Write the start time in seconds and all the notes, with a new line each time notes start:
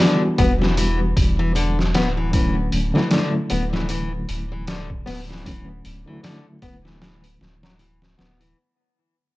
Already playing: E3 G3 B3 D4 F#4
0.00 D3, snare
0.38 E1 B3, kick, open hi-hat
0.61 E3, snare
0.77 E3, open hi-hat
1.17 E1, kick, open hi-hat
1.39 E3
1.55 D3, open hi-hat
1.79 snare
1.94 D1 B3, snare, open hi-hat
2.17 E3
2.32 D3 E3 F#3 A3 C#4, kick, open hi-hat
2.72 D1, open hi-hat
2.94 D3 E3 F#3 A3 E4, snare
3.11 D3, snare, open hi-hat
3.50 D1 B3, open hi-hat
3.73 E3, snare
3.89 E3, open hi-hat
4.29 D1, open hi-hat
4.52 E3
4.67 D3, snare, open hi-hat
4.90 kick
5.06 D1 B3, snare, open hi-hat
5.29 E3, snare
5.44 D3 E3 F#3 A3 C#4, kick, open hi-hat
5.85 D1, open hi-hat
6.06 D3 E3 F#3 A3 E4
6.23 D3, snare, open hi-hat
6.62 D1 B3, kick, open hi-hat
6.85 E3, snare
7.01 E3, snare
7.24 open hi-hat
7.41 D1, snare
7.63 F#3, snare
7.79 E3, open hi-hat
8.02 snare
8.18 D1 B3, snare
8.40 E3, open hi-hat